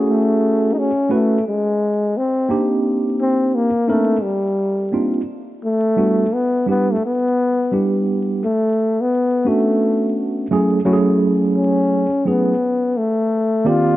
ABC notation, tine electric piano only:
X:1
M:4/4
L:1/8
Q:"Swing 16ths" 1/4=86
K:F#phr
V:1 name="Tine electric piano"
[A,CEF^G]2 z [A,CEFB] z3 [_B,=CD_E=G]- | [_B,=CD_EG]2 z [B,CDE_B] z2 [B,CDE^E] z | z [G,B,DEF] z [G,B,DEG] z2 [G,B,DEG]2 | z3 [A,B,CDF]3 [F,A,CE^G] [F,A,CEFG]- |
[F,A,CEF^G]2 z [F,A,CEG] z3 [_E,_B,=C=Gd] |]